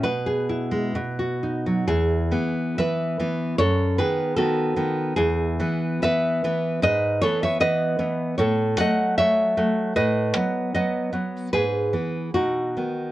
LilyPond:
\new Staff \with { instrumentName = "Nylon-string guitar" } { \time 2/4 \key e \major \tempo 4 = 75 << { b'4. r8 | <e' gis'>4 <b' e''>4 | <a' cis''>8 <gis' b'>8 <fis' a'>4 | <e' gis'>4 <b' e''>4 |
<b' dis''>8 <a' cis''>16 <cis'' e''>16 <b' dis''>4 | <a' cis''>8 <dis'' fis''>8 <cis'' e''>4 | <b' dis''>4 <b' dis''>8 r8 | <gis' b'>4 <dis' fis'>4 | } \\ { b,16 gis'16 e'16 gis16 b,16 fis'16 dis'16 fis16 | e,8 <e b>8 <e b>8 <e b>8 | fis,8 <dis b>8 <dis b>8 <dis b>8 | e,8 <e b>8 <e b>8 <e b>8 |
gis,8 <e b>8 <e b>8 <e b>8 | a,8 <fis a>8 <fis a>8 <fis a>8 | a,8 <fis b>8 <fis b>8 <fis b>8 | gis,8 <e b>8 b,8 <dis b>8 | } >> }